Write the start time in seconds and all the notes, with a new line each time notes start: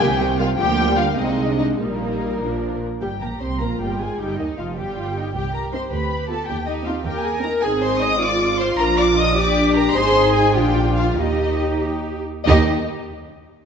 0.00 C2 C3 D#3 G3 G4 G5
0.20 D#3 G3
0.39 D#3 G3 F4 F5
0.58 D2 D3 F3 A#3 G4 G5
0.87 G3
0.97 F4 F5
1.18 C2 C3 G#3 C4 D#4 D#5
1.49 D4
1.59 D#4 D#5
1.80 A#1 A#2 G3 A#3 D#4 A#4
2.41 A#1 A#2 F3 D4
3.01 G1 G3 G4 G5
3.21 A#1 A#3 A#4 A#5
3.41 C2 C4 C5 C6
3.60 A#1 A#3 F4 A#4 A#5
3.80 G1 G3 G4 G5
4.00 G#1 G#3 G#4 G#5
4.20 G1 G3 D#4 G4 G5
4.39 D#2 D#3 D#4 D#5
4.58 F1 F3 F4 F5
4.78 G1 G3 G4 G5
4.98 F4
5.16 D#4
5.35 C2 G4 G5
5.55 A#4 A#5
5.73 C4 D#4 C5 C6
5.93 D2 B4 B5
6.30 B3 F4 A4 A5
6.48 D#2 G4 G5
6.67 D#4 D#5
6.86 C4 D#4 F4 F5
7.06 D#2 G4 A#4 G5
7.24 G#4 G#5
7.43 C4 D#4 A#4 A#5
7.62 G#1 C4 D#4 G#4 G#5
7.82 C5 C6
8.02 D#5 D#6
8.21 F4 D5 D6
8.60 C5 C6
8.79 A#1 D4 A#4 A#5
8.98 D5 D6
9.17 D#5 D#6
9.36 D4 G4 D5 D6
9.76 A#4 A#5
9.94 G#1 D#4 G#4 C5 C6
10.35 G#4 G#5
10.55 A#1 D4 F4 G4 G5
10.97 F4 F5
11.10 F5
11.18 D#2 D#4 G4 D#5
12.47 D#2 D#4 G4 D#5